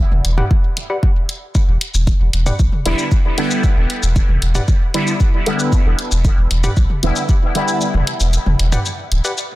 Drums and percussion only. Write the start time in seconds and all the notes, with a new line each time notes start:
0.12 high tom
0.25 closed hi-hat
0.38 mid tom
0.51 kick
0.77 closed hi-hat
1.03 kick
1.29 closed hi-hat
1.55 kick, shaker
1.81 closed hi-hat
1.94 shaker
2.07 kick, closed hi-hat, shaker
2.33 closed hi-hat
2.46 mid tom, shaker
2.59 kick, shaker
2.72 high tom
2.86 closed hi-hat
2.99 shaker
3.12 kick, shaker
3.38 closed hi-hat
3.51 shaker
3.64 kick, shaker
3.90 closed hi-hat
4.03 shaker
4.16 kick, closed hi-hat, shaker
4.29 high tom
4.42 closed hi-hat
4.55 mid tom, shaker
4.68 kick, shaker
4.94 closed hi-hat
5.07 shaker
5.20 kick, shaker
5.46 closed hi-hat
5.59 shaker
5.72 kick, shaker
5.99 closed hi-hat
6.12 shaker
6.25 kick, closed hi-hat, shaker
6.51 closed hi-hat
6.64 mid tom, shaker
6.77 kick, shaker
6.90 high tom
7.03 closed hi-hat
7.16 shaker
7.29 kick, shaker
7.55 closed hi-hat
7.68 shaker
7.81 shaker
7.94 high tom
8.07 closed hi-hat
8.20 shaker
8.33 closed hi-hat, shaker
8.46 high tom
8.59 closed hi-hat
8.72 mid tom, shaker
8.86 shaker
9.12 closed hi-hat
9.25 shaker
9.38 shaker